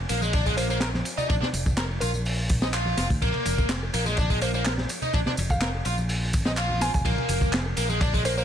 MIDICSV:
0, 0, Header, 1, 5, 480
1, 0, Start_track
1, 0, Tempo, 480000
1, 1295, Time_signature, 4, 2, 24, 8
1, 8444, End_track
2, 0, Start_track
2, 0, Title_t, "Synth pluck"
2, 0, Program_c, 0, 84
2, 571, Note_on_c, 0, 72, 86
2, 653, Note_off_c, 0, 72, 0
2, 698, Note_on_c, 0, 72, 76
2, 772, Note_off_c, 0, 72, 0
2, 1175, Note_on_c, 0, 74, 90
2, 1251, Note_off_c, 0, 74, 0
2, 1294, Note_on_c, 0, 74, 79
2, 1375, Note_off_c, 0, 74, 0
2, 2004, Note_on_c, 0, 70, 92
2, 2684, Note_off_c, 0, 70, 0
2, 4421, Note_on_c, 0, 72, 85
2, 4499, Note_off_c, 0, 72, 0
2, 4549, Note_on_c, 0, 72, 79
2, 4618, Note_off_c, 0, 72, 0
2, 5504, Note_on_c, 0, 77, 94
2, 5717, Note_off_c, 0, 77, 0
2, 6817, Note_on_c, 0, 80, 96
2, 6896, Note_off_c, 0, 80, 0
2, 6941, Note_on_c, 0, 80, 80
2, 7014, Note_off_c, 0, 80, 0
2, 8250, Note_on_c, 0, 72, 92
2, 8333, Note_off_c, 0, 72, 0
2, 8377, Note_on_c, 0, 72, 76
2, 8444, Note_off_c, 0, 72, 0
2, 8444, End_track
3, 0, Start_track
3, 0, Title_t, "Overdriven electric guitar"
3, 0, Program_c, 1, 29
3, 94, Note_on_c, 1, 58, 107
3, 208, Note_off_c, 1, 58, 0
3, 220, Note_on_c, 1, 56, 79
3, 329, Note_off_c, 1, 56, 0
3, 337, Note_on_c, 1, 62, 86
3, 449, Note_off_c, 1, 62, 0
3, 460, Note_on_c, 1, 56, 105
3, 543, Note_off_c, 1, 56, 0
3, 574, Note_on_c, 1, 58, 77
3, 666, Note_off_c, 1, 58, 0
3, 702, Note_on_c, 1, 58, 105
3, 784, Note_off_c, 1, 58, 0
3, 818, Note_on_c, 1, 70, 85
3, 871, Note_off_c, 1, 70, 0
3, 1180, Note_on_c, 1, 63, 102
3, 1289, Note_off_c, 1, 63, 0
3, 1293, Note_on_c, 1, 62, 85
3, 1349, Note_off_c, 1, 62, 0
3, 1418, Note_on_c, 1, 62, 104
3, 1469, Note_off_c, 1, 62, 0
3, 1776, Note_on_c, 1, 70, 81
3, 1830, Note_off_c, 1, 70, 0
3, 2015, Note_on_c, 1, 65, 105
3, 2106, Note_off_c, 1, 65, 0
3, 2621, Note_on_c, 1, 63, 79
3, 2670, Note_off_c, 1, 63, 0
3, 2738, Note_on_c, 1, 65, 84
3, 2965, Note_off_c, 1, 65, 0
3, 2980, Note_on_c, 1, 65, 104
3, 3069, Note_off_c, 1, 65, 0
3, 3220, Note_on_c, 1, 58, 87
3, 3686, Note_off_c, 1, 58, 0
3, 3938, Note_on_c, 1, 58, 104
3, 4050, Note_off_c, 1, 58, 0
3, 4060, Note_on_c, 1, 56, 76
3, 4169, Note_off_c, 1, 56, 0
3, 4178, Note_on_c, 1, 62, 81
3, 4290, Note_off_c, 1, 62, 0
3, 4299, Note_on_c, 1, 56, 106
3, 4383, Note_off_c, 1, 56, 0
3, 4414, Note_on_c, 1, 58, 76
3, 4506, Note_off_c, 1, 58, 0
3, 4542, Note_on_c, 1, 58, 106
3, 4624, Note_off_c, 1, 58, 0
3, 4658, Note_on_c, 1, 70, 82
3, 4711, Note_off_c, 1, 70, 0
3, 5024, Note_on_c, 1, 63, 111
3, 5131, Note_off_c, 1, 63, 0
3, 5139, Note_on_c, 1, 62, 86
3, 5192, Note_off_c, 1, 62, 0
3, 5268, Note_on_c, 1, 62, 106
3, 5314, Note_off_c, 1, 62, 0
3, 5618, Note_on_c, 1, 70, 84
3, 5672, Note_off_c, 1, 70, 0
3, 5861, Note_on_c, 1, 65, 106
3, 5949, Note_off_c, 1, 65, 0
3, 6460, Note_on_c, 1, 63, 77
3, 6510, Note_off_c, 1, 63, 0
3, 6576, Note_on_c, 1, 65, 82
3, 6801, Note_off_c, 1, 65, 0
3, 6813, Note_on_c, 1, 65, 104
3, 6905, Note_off_c, 1, 65, 0
3, 7051, Note_on_c, 1, 58, 88
3, 7521, Note_off_c, 1, 58, 0
3, 7774, Note_on_c, 1, 58, 104
3, 7888, Note_off_c, 1, 58, 0
3, 7897, Note_on_c, 1, 56, 81
3, 8008, Note_off_c, 1, 56, 0
3, 8009, Note_on_c, 1, 62, 84
3, 8125, Note_off_c, 1, 62, 0
3, 8136, Note_on_c, 1, 56, 108
3, 8221, Note_off_c, 1, 56, 0
3, 8249, Note_on_c, 1, 58, 83
3, 8343, Note_off_c, 1, 58, 0
3, 8372, Note_on_c, 1, 58, 100
3, 8444, Note_off_c, 1, 58, 0
3, 8444, End_track
4, 0, Start_track
4, 0, Title_t, "Fingered electric bass"
4, 0, Program_c, 2, 33
4, 98, Note_on_c, 2, 34, 98
4, 1008, Note_off_c, 2, 34, 0
4, 1298, Note_on_c, 2, 34, 99
4, 1389, Note_off_c, 2, 34, 0
4, 1542, Note_on_c, 2, 29, 95
4, 1970, Note_off_c, 2, 29, 0
4, 2017, Note_on_c, 2, 34, 98
4, 2928, Note_off_c, 2, 34, 0
4, 2977, Note_on_c, 2, 29, 87
4, 3069, Note_off_c, 2, 29, 0
4, 3102, Note_on_c, 2, 38, 103
4, 3185, Note_off_c, 2, 38, 0
4, 3220, Note_on_c, 2, 34, 103
4, 3310, Note_off_c, 2, 34, 0
4, 3459, Note_on_c, 2, 29, 92
4, 3889, Note_off_c, 2, 29, 0
4, 3939, Note_on_c, 2, 34, 102
4, 4849, Note_off_c, 2, 34, 0
4, 5138, Note_on_c, 2, 34, 98
4, 5229, Note_off_c, 2, 34, 0
4, 5378, Note_on_c, 2, 29, 91
4, 5808, Note_off_c, 2, 29, 0
4, 5854, Note_on_c, 2, 34, 98
4, 6332, Note_off_c, 2, 34, 0
4, 6338, Note_on_c, 2, 32, 105
4, 6429, Note_off_c, 2, 32, 0
4, 6465, Note_on_c, 2, 34, 86
4, 6890, Note_off_c, 2, 34, 0
4, 6946, Note_on_c, 2, 29, 87
4, 7028, Note_off_c, 2, 29, 0
4, 7049, Note_on_c, 2, 34, 105
4, 7145, Note_off_c, 2, 34, 0
4, 7289, Note_on_c, 2, 29, 95
4, 7724, Note_off_c, 2, 29, 0
4, 7772, Note_on_c, 2, 34, 97
4, 8444, Note_off_c, 2, 34, 0
4, 8444, End_track
5, 0, Start_track
5, 0, Title_t, "Drums"
5, 91, Note_on_c, 9, 51, 72
5, 93, Note_on_c, 9, 46, 84
5, 93, Note_on_c, 9, 54, 78
5, 191, Note_off_c, 9, 51, 0
5, 193, Note_off_c, 9, 46, 0
5, 193, Note_off_c, 9, 54, 0
5, 214, Note_on_c, 9, 63, 73
5, 220, Note_on_c, 9, 54, 42
5, 314, Note_off_c, 9, 63, 0
5, 320, Note_off_c, 9, 54, 0
5, 330, Note_on_c, 9, 51, 97
5, 333, Note_on_c, 9, 54, 33
5, 336, Note_on_c, 9, 36, 121
5, 430, Note_off_c, 9, 51, 0
5, 433, Note_off_c, 9, 54, 0
5, 436, Note_off_c, 9, 36, 0
5, 456, Note_on_c, 9, 36, 90
5, 461, Note_on_c, 9, 46, 49
5, 556, Note_off_c, 9, 36, 0
5, 561, Note_off_c, 9, 46, 0
5, 572, Note_on_c, 9, 60, 56
5, 574, Note_on_c, 9, 46, 86
5, 574, Note_on_c, 9, 51, 64
5, 574, Note_on_c, 9, 54, 76
5, 672, Note_off_c, 9, 60, 0
5, 674, Note_off_c, 9, 46, 0
5, 674, Note_off_c, 9, 51, 0
5, 674, Note_off_c, 9, 54, 0
5, 700, Note_on_c, 9, 54, 42
5, 800, Note_off_c, 9, 54, 0
5, 804, Note_on_c, 9, 38, 127
5, 814, Note_on_c, 9, 51, 90
5, 817, Note_on_c, 9, 39, 112
5, 817, Note_on_c, 9, 54, 34
5, 904, Note_off_c, 9, 38, 0
5, 914, Note_off_c, 9, 51, 0
5, 917, Note_off_c, 9, 39, 0
5, 917, Note_off_c, 9, 54, 0
5, 941, Note_on_c, 9, 63, 100
5, 943, Note_on_c, 9, 38, 57
5, 1041, Note_off_c, 9, 63, 0
5, 1043, Note_off_c, 9, 38, 0
5, 1051, Note_on_c, 9, 51, 67
5, 1057, Note_on_c, 9, 46, 83
5, 1057, Note_on_c, 9, 54, 79
5, 1151, Note_off_c, 9, 51, 0
5, 1157, Note_off_c, 9, 46, 0
5, 1157, Note_off_c, 9, 54, 0
5, 1176, Note_on_c, 9, 64, 90
5, 1182, Note_on_c, 9, 54, 45
5, 1276, Note_off_c, 9, 64, 0
5, 1282, Note_off_c, 9, 54, 0
5, 1296, Note_on_c, 9, 51, 80
5, 1296, Note_on_c, 9, 54, 31
5, 1298, Note_on_c, 9, 36, 108
5, 1396, Note_off_c, 9, 51, 0
5, 1396, Note_off_c, 9, 54, 0
5, 1398, Note_off_c, 9, 36, 0
5, 1412, Note_on_c, 9, 64, 83
5, 1427, Note_on_c, 9, 38, 60
5, 1512, Note_off_c, 9, 64, 0
5, 1527, Note_off_c, 9, 38, 0
5, 1529, Note_on_c, 9, 63, 100
5, 1537, Note_on_c, 9, 46, 83
5, 1537, Note_on_c, 9, 51, 62
5, 1537, Note_on_c, 9, 54, 77
5, 1629, Note_off_c, 9, 63, 0
5, 1637, Note_off_c, 9, 46, 0
5, 1637, Note_off_c, 9, 51, 0
5, 1637, Note_off_c, 9, 54, 0
5, 1657, Note_on_c, 9, 60, 53
5, 1663, Note_on_c, 9, 36, 108
5, 1663, Note_on_c, 9, 54, 40
5, 1757, Note_off_c, 9, 60, 0
5, 1763, Note_off_c, 9, 36, 0
5, 1763, Note_off_c, 9, 54, 0
5, 1773, Note_on_c, 9, 38, 113
5, 1776, Note_on_c, 9, 39, 109
5, 1776, Note_on_c, 9, 54, 31
5, 1777, Note_on_c, 9, 51, 86
5, 1873, Note_off_c, 9, 38, 0
5, 1876, Note_off_c, 9, 39, 0
5, 1876, Note_off_c, 9, 54, 0
5, 1877, Note_off_c, 9, 51, 0
5, 1888, Note_on_c, 9, 60, 65
5, 1988, Note_off_c, 9, 60, 0
5, 2010, Note_on_c, 9, 51, 64
5, 2013, Note_on_c, 9, 46, 85
5, 2013, Note_on_c, 9, 54, 75
5, 2110, Note_off_c, 9, 51, 0
5, 2113, Note_off_c, 9, 46, 0
5, 2113, Note_off_c, 9, 54, 0
5, 2138, Note_on_c, 9, 54, 42
5, 2141, Note_on_c, 9, 63, 66
5, 2238, Note_off_c, 9, 54, 0
5, 2241, Note_off_c, 9, 63, 0
5, 2253, Note_on_c, 9, 54, 32
5, 2260, Note_on_c, 9, 46, 86
5, 2353, Note_off_c, 9, 54, 0
5, 2360, Note_off_c, 9, 46, 0
5, 2494, Note_on_c, 9, 46, 81
5, 2494, Note_on_c, 9, 54, 75
5, 2496, Note_on_c, 9, 51, 67
5, 2500, Note_on_c, 9, 36, 106
5, 2594, Note_off_c, 9, 46, 0
5, 2594, Note_off_c, 9, 54, 0
5, 2596, Note_off_c, 9, 51, 0
5, 2600, Note_off_c, 9, 36, 0
5, 2620, Note_on_c, 9, 38, 115
5, 2621, Note_on_c, 9, 54, 41
5, 2720, Note_off_c, 9, 38, 0
5, 2721, Note_off_c, 9, 54, 0
5, 2738, Note_on_c, 9, 39, 114
5, 2738, Note_on_c, 9, 54, 34
5, 2744, Note_on_c, 9, 51, 79
5, 2838, Note_off_c, 9, 39, 0
5, 2838, Note_off_c, 9, 54, 0
5, 2844, Note_off_c, 9, 51, 0
5, 2853, Note_on_c, 9, 63, 88
5, 2953, Note_off_c, 9, 63, 0
5, 2973, Note_on_c, 9, 38, 50
5, 2975, Note_on_c, 9, 46, 84
5, 2975, Note_on_c, 9, 51, 68
5, 2975, Note_on_c, 9, 54, 80
5, 3073, Note_off_c, 9, 38, 0
5, 3075, Note_off_c, 9, 46, 0
5, 3075, Note_off_c, 9, 51, 0
5, 3075, Note_off_c, 9, 54, 0
5, 3103, Note_on_c, 9, 36, 94
5, 3104, Note_on_c, 9, 46, 47
5, 3104, Note_on_c, 9, 54, 43
5, 3203, Note_off_c, 9, 36, 0
5, 3204, Note_off_c, 9, 46, 0
5, 3204, Note_off_c, 9, 54, 0
5, 3218, Note_on_c, 9, 36, 103
5, 3220, Note_on_c, 9, 51, 86
5, 3220, Note_on_c, 9, 54, 32
5, 3318, Note_off_c, 9, 36, 0
5, 3320, Note_off_c, 9, 51, 0
5, 3320, Note_off_c, 9, 54, 0
5, 3338, Note_on_c, 9, 51, 48
5, 3338, Note_on_c, 9, 64, 75
5, 3438, Note_off_c, 9, 51, 0
5, 3438, Note_off_c, 9, 64, 0
5, 3453, Note_on_c, 9, 63, 83
5, 3454, Note_on_c, 9, 51, 73
5, 3460, Note_on_c, 9, 46, 83
5, 3460, Note_on_c, 9, 54, 72
5, 3553, Note_off_c, 9, 63, 0
5, 3554, Note_off_c, 9, 51, 0
5, 3560, Note_off_c, 9, 46, 0
5, 3560, Note_off_c, 9, 54, 0
5, 3583, Note_on_c, 9, 60, 46
5, 3584, Note_on_c, 9, 36, 95
5, 3585, Note_on_c, 9, 54, 41
5, 3683, Note_off_c, 9, 60, 0
5, 3684, Note_off_c, 9, 36, 0
5, 3685, Note_off_c, 9, 54, 0
5, 3691, Note_on_c, 9, 38, 120
5, 3693, Note_on_c, 9, 51, 88
5, 3697, Note_on_c, 9, 39, 112
5, 3697, Note_on_c, 9, 54, 30
5, 3791, Note_off_c, 9, 38, 0
5, 3793, Note_off_c, 9, 51, 0
5, 3797, Note_off_c, 9, 39, 0
5, 3797, Note_off_c, 9, 54, 0
5, 3829, Note_on_c, 9, 60, 61
5, 3929, Note_off_c, 9, 60, 0
5, 3936, Note_on_c, 9, 51, 78
5, 3937, Note_on_c, 9, 46, 83
5, 3937, Note_on_c, 9, 54, 74
5, 4037, Note_off_c, 9, 46, 0
5, 4037, Note_off_c, 9, 51, 0
5, 4037, Note_off_c, 9, 54, 0
5, 4059, Note_on_c, 9, 54, 41
5, 4061, Note_on_c, 9, 63, 75
5, 4159, Note_off_c, 9, 54, 0
5, 4161, Note_off_c, 9, 63, 0
5, 4168, Note_on_c, 9, 51, 88
5, 4174, Note_on_c, 9, 54, 32
5, 4176, Note_on_c, 9, 36, 103
5, 4268, Note_off_c, 9, 51, 0
5, 4274, Note_off_c, 9, 54, 0
5, 4276, Note_off_c, 9, 36, 0
5, 4300, Note_on_c, 9, 46, 47
5, 4301, Note_on_c, 9, 36, 93
5, 4400, Note_off_c, 9, 46, 0
5, 4401, Note_off_c, 9, 36, 0
5, 4413, Note_on_c, 9, 60, 50
5, 4414, Note_on_c, 9, 46, 86
5, 4414, Note_on_c, 9, 54, 71
5, 4416, Note_on_c, 9, 51, 68
5, 4513, Note_off_c, 9, 60, 0
5, 4514, Note_off_c, 9, 46, 0
5, 4514, Note_off_c, 9, 54, 0
5, 4516, Note_off_c, 9, 51, 0
5, 4538, Note_on_c, 9, 54, 38
5, 4638, Note_off_c, 9, 54, 0
5, 4652, Note_on_c, 9, 51, 93
5, 4653, Note_on_c, 9, 39, 110
5, 4653, Note_on_c, 9, 54, 32
5, 4666, Note_on_c, 9, 38, 102
5, 4752, Note_off_c, 9, 51, 0
5, 4753, Note_off_c, 9, 39, 0
5, 4753, Note_off_c, 9, 54, 0
5, 4766, Note_off_c, 9, 38, 0
5, 4778, Note_on_c, 9, 63, 94
5, 4780, Note_on_c, 9, 38, 63
5, 4878, Note_off_c, 9, 63, 0
5, 4880, Note_off_c, 9, 38, 0
5, 4892, Note_on_c, 9, 46, 89
5, 4892, Note_on_c, 9, 54, 75
5, 4897, Note_on_c, 9, 51, 78
5, 4992, Note_off_c, 9, 46, 0
5, 4992, Note_off_c, 9, 54, 0
5, 4997, Note_off_c, 9, 51, 0
5, 5017, Note_on_c, 9, 64, 81
5, 5019, Note_on_c, 9, 54, 43
5, 5117, Note_off_c, 9, 64, 0
5, 5119, Note_off_c, 9, 54, 0
5, 5133, Note_on_c, 9, 54, 33
5, 5137, Note_on_c, 9, 36, 106
5, 5141, Note_on_c, 9, 51, 89
5, 5233, Note_off_c, 9, 54, 0
5, 5237, Note_off_c, 9, 36, 0
5, 5241, Note_off_c, 9, 51, 0
5, 5261, Note_on_c, 9, 38, 58
5, 5265, Note_on_c, 9, 64, 82
5, 5361, Note_off_c, 9, 38, 0
5, 5365, Note_off_c, 9, 64, 0
5, 5373, Note_on_c, 9, 46, 87
5, 5373, Note_on_c, 9, 54, 73
5, 5382, Note_on_c, 9, 63, 92
5, 5386, Note_on_c, 9, 51, 65
5, 5473, Note_off_c, 9, 46, 0
5, 5473, Note_off_c, 9, 54, 0
5, 5482, Note_off_c, 9, 63, 0
5, 5486, Note_off_c, 9, 51, 0
5, 5501, Note_on_c, 9, 36, 98
5, 5501, Note_on_c, 9, 54, 39
5, 5516, Note_on_c, 9, 60, 56
5, 5601, Note_off_c, 9, 36, 0
5, 5601, Note_off_c, 9, 54, 0
5, 5608, Note_on_c, 9, 51, 82
5, 5614, Note_on_c, 9, 39, 103
5, 5614, Note_on_c, 9, 54, 30
5, 5615, Note_on_c, 9, 38, 107
5, 5616, Note_off_c, 9, 60, 0
5, 5708, Note_off_c, 9, 51, 0
5, 5714, Note_off_c, 9, 39, 0
5, 5714, Note_off_c, 9, 54, 0
5, 5715, Note_off_c, 9, 38, 0
5, 5747, Note_on_c, 9, 60, 64
5, 5847, Note_off_c, 9, 60, 0
5, 5848, Note_on_c, 9, 51, 65
5, 5853, Note_on_c, 9, 46, 85
5, 5853, Note_on_c, 9, 54, 71
5, 5948, Note_off_c, 9, 51, 0
5, 5953, Note_off_c, 9, 46, 0
5, 5953, Note_off_c, 9, 54, 0
5, 5978, Note_on_c, 9, 54, 41
5, 5980, Note_on_c, 9, 63, 64
5, 6078, Note_off_c, 9, 54, 0
5, 6080, Note_off_c, 9, 63, 0
5, 6091, Note_on_c, 9, 46, 81
5, 6092, Note_on_c, 9, 54, 31
5, 6191, Note_off_c, 9, 46, 0
5, 6192, Note_off_c, 9, 54, 0
5, 6333, Note_on_c, 9, 46, 86
5, 6333, Note_on_c, 9, 54, 74
5, 6339, Note_on_c, 9, 36, 104
5, 6339, Note_on_c, 9, 51, 68
5, 6433, Note_off_c, 9, 46, 0
5, 6433, Note_off_c, 9, 54, 0
5, 6439, Note_off_c, 9, 36, 0
5, 6439, Note_off_c, 9, 51, 0
5, 6455, Note_on_c, 9, 38, 125
5, 6458, Note_on_c, 9, 54, 40
5, 6461, Note_on_c, 9, 60, 38
5, 6555, Note_off_c, 9, 38, 0
5, 6558, Note_off_c, 9, 54, 0
5, 6561, Note_off_c, 9, 60, 0
5, 6571, Note_on_c, 9, 39, 101
5, 6571, Note_on_c, 9, 54, 31
5, 6574, Note_on_c, 9, 51, 90
5, 6671, Note_off_c, 9, 39, 0
5, 6671, Note_off_c, 9, 54, 0
5, 6674, Note_off_c, 9, 51, 0
5, 6697, Note_on_c, 9, 63, 87
5, 6797, Note_off_c, 9, 63, 0
5, 6812, Note_on_c, 9, 38, 50
5, 6813, Note_on_c, 9, 46, 90
5, 6813, Note_on_c, 9, 51, 67
5, 6813, Note_on_c, 9, 54, 74
5, 6912, Note_off_c, 9, 38, 0
5, 6913, Note_off_c, 9, 46, 0
5, 6913, Note_off_c, 9, 51, 0
5, 6913, Note_off_c, 9, 54, 0
5, 6941, Note_on_c, 9, 46, 53
5, 6941, Note_on_c, 9, 54, 42
5, 6944, Note_on_c, 9, 36, 108
5, 7041, Note_off_c, 9, 46, 0
5, 7041, Note_off_c, 9, 54, 0
5, 7044, Note_off_c, 9, 36, 0
5, 7048, Note_on_c, 9, 36, 117
5, 7053, Note_on_c, 9, 51, 90
5, 7054, Note_on_c, 9, 54, 31
5, 7148, Note_off_c, 9, 36, 0
5, 7153, Note_off_c, 9, 51, 0
5, 7154, Note_off_c, 9, 54, 0
5, 7175, Note_on_c, 9, 64, 88
5, 7180, Note_on_c, 9, 51, 42
5, 7275, Note_off_c, 9, 64, 0
5, 7280, Note_off_c, 9, 51, 0
5, 7285, Note_on_c, 9, 51, 69
5, 7292, Note_on_c, 9, 46, 92
5, 7292, Note_on_c, 9, 54, 75
5, 7293, Note_on_c, 9, 63, 84
5, 7385, Note_off_c, 9, 51, 0
5, 7392, Note_off_c, 9, 46, 0
5, 7392, Note_off_c, 9, 54, 0
5, 7393, Note_off_c, 9, 63, 0
5, 7412, Note_on_c, 9, 36, 100
5, 7418, Note_on_c, 9, 54, 41
5, 7426, Note_on_c, 9, 60, 55
5, 7512, Note_off_c, 9, 36, 0
5, 7518, Note_off_c, 9, 54, 0
5, 7525, Note_on_c, 9, 51, 81
5, 7526, Note_off_c, 9, 60, 0
5, 7530, Note_on_c, 9, 39, 98
5, 7530, Note_on_c, 9, 54, 32
5, 7539, Note_on_c, 9, 38, 107
5, 7625, Note_off_c, 9, 51, 0
5, 7630, Note_off_c, 9, 39, 0
5, 7630, Note_off_c, 9, 54, 0
5, 7639, Note_off_c, 9, 38, 0
5, 7658, Note_on_c, 9, 60, 65
5, 7757, Note_off_c, 9, 60, 0
5, 7766, Note_on_c, 9, 51, 73
5, 7770, Note_on_c, 9, 46, 95
5, 7770, Note_on_c, 9, 54, 75
5, 7866, Note_off_c, 9, 51, 0
5, 7870, Note_off_c, 9, 46, 0
5, 7870, Note_off_c, 9, 54, 0
5, 7895, Note_on_c, 9, 63, 62
5, 7896, Note_on_c, 9, 54, 41
5, 7995, Note_off_c, 9, 63, 0
5, 7996, Note_off_c, 9, 54, 0
5, 8008, Note_on_c, 9, 51, 102
5, 8009, Note_on_c, 9, 36, 123
5, 8012, Note_on_c, 9, 54, 32
5, 8108, Note_off_c, 9, 51, 0
5, 8109, Note_off_c, 9, 36, 0
5, 8112, Note_off_c, 9, 54, 0
5, 8137, Note_on_c, 9, 36, 90
5, 8141, Note_on_c, 9, 46, 56
5, 8237, Note_off_c, 9, 36, 0
5, 8241, Note_off_c, 9, 46, 0
5, 8248, Note_on_c, 9, 51, 74
5, 8251, Note_on_c, 9, 46, 94
5, 8251, Note_on_c, 9, 54, 75
5, 8253, Note_on_c, 9, 60, 62
5, 8348, Note_off_c, 9, 51, 0
5, 8351, Note_off_c, 9, 46, 0
5, 8351, Note_off_c, 9, 54, 0
5, 8353, Note_off_c, 9, 60, 0
5, 8380, Note_on_c, 9, 54, 39
5, 8444, Note_off_c, 9, 54, 0
5, 8444, End_track
0, 0, End_of_file